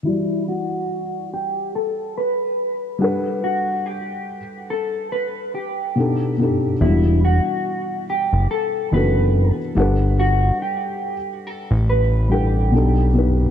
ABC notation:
X:1
M:4/4
L:1/16
Q:"Swing 16ths" 1/4=71
K:Em
V:1 name="Clean electric guitar"
E2 F4 G2 A2 B3 z3 | F2 G4 A2 B2 G6 | E2 F4 G2 A2 B3 z3 | F2 G4 A2 B2 G6 |]
V:2 name="Felt piano"
[E,G,EFd]6 z8 [G,DABf]2- | [G,DABf]4 z8 [B,,B,D^DGA]2 [B,,B,=D^DGA]2 | [E,G,B,DF]6 z4 [E,B,DFA]3 z [G,DABf]2- | [G,DABf]4 z6 [G,DABf]2 [B,,B,D^DGA]2 [B,,B,=D^DGB]2 |]
V:3 name="Analog synth bass" clef=bass
z16 | z16 | E,,,3 z4 F,,, z2 F,,,3 z G,,,2- | G,,,2 z4 z A,,,4- A,,, B,,,4 |]